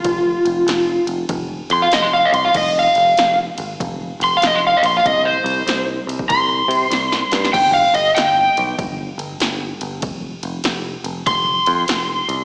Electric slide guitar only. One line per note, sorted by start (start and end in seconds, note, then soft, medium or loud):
0.00 1.04 F4 loud
1.73 1.85 C6 loud
1.82 1.90 F5 medium
1.94 2.06 D#5 loud
2.02 2.11 C6 medium
2.13 2.32 F5 medium
2.25 2.30 D#5 loud
2.34 2.47 C6 loud
2.45 2.53 F5 medium
2.57 2.76 D#5 medium
2.79 3.38 F5 loud
4.24 4.35 C6 loud
4.37 4.43 F5 loud
4.47 4.57 D#5 medium
4.55 4.62 C6 medium
4.67 4.84 F5 medium
4.77 4.80 D#5 loud
4.86 4.98 C6 medium
4.97 5.04 F5 medium
5.06 5.25 D#5 loud
5.25 5.85 C5 loud
6.29 7.50 C6 loud
7.53 7.73 G5 medium
7.74 7.94 F5 medium
7.94 8.15 D#5 medium
8.15 8.75 G5 loud
11.27 12.44 C6 loud